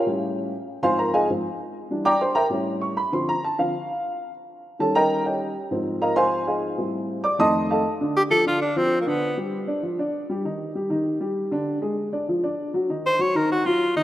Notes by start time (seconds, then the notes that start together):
0.06 A2 G3 C#4
0.82 G#2 F3 C4 C5 F5 G#5 C6
0.99 A#4 A#5
1.14 G#4 D#5 F5 G#5
1.30 G#2 F3 C4
1.90 E3 G3 D4
2.05 D5 G5 A#5 D6
2.21 C5 C6
2.35 A#4 E5 G5 A#5
2.49 A2 G3 C#4
2.81 C#6
2.97 B5
3.12 D3 F3 C4 C6
3.29 A#5
3.44 A5
3.58 D3 F3 C4 F5
4.79 D#3 G3 C#4 A4 A5
4.95 A#4 D#5 G5 A#5
5.26 G4 C#5 D#5 G5
5.71 G#2 F3 C4
6.02 A#4 D#5 F5 A#5
6.16 C5 F5 G#5 C6
6.47 G#4 D#5 F5 G#5
6.78 A2 G3 C4
7.24 D5 D6
7.38 F2 D#3 A3 D#5 A5 C6 D#6
7.71 A4 D#5 F5 A5
8.01 D3 D4
8.16 G4
8.30 F3 F4 A4
8.46 D3 D4 F4
8.62 D4
8.76 F3 C4 F4
9.01 A#3
9.07 D3 B3 D4
9.37 G3 G4
9.67 D4 D5
9.83 F3 F4
9.99 D4 D5
10.30 G3 G4
10.45 D#3 D#4
10.75 G3 G4
10.90 D#3 D#4
11.21 G3 G4
11.51 D3 D4
11.82 G#3 G#4
12.13 D4 D5
12.29 F3 F4
12.43 D4 D5
12.74 F#3 F#4
12.89 D#3 D#4
13.06 C5
13.19 F#3 F#4 C#5
13.35 D#3 D#4 A#4
13.52 F#4
13.66 F#3 F4
13.96 D#3 D#4